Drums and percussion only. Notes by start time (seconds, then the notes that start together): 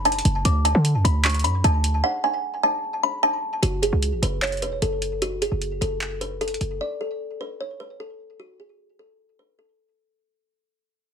0.05 closed hi-hat
0.12 closed hi-hat
0.19 closed hi-hat
0.25 closed hi-hat
0.45 closed hi-hat
0.65 closed hi-hat
0.85 closed hi-hat
1.05 closed hi-hat
1.25 clap, closed hi-hat
1.29 closed hi-hat
1.34 closed hi-hat
1.39 closed hi-hat
1.45 closed hi-hat
1.64 closed hi-hat
1.84 closed hi-hat
3.63 closed hi-hat
3.83 closed hi-hat
4.03 closed hi-hat
4.23 closed hi-hat
4.42 clap, closed hi-hat
4.47 closed hi-hat
4.52 closed hi-hat
4.57 closed hi-hat
4.62 closed hi-hat
4.82 closed hi-hat
5.02 closed hi-hat
5.22 closed hi-hat
5.42 closed hi-hat
5.62 closed hi-hat
5.82 closed hi-hat
6.01 clap, closed hi-hat
6.21 closed hi-hat
6.41 closed hi-hat
6.48 closed hi-hat
6.54 closed hi-hat
6.61 closed hi-hat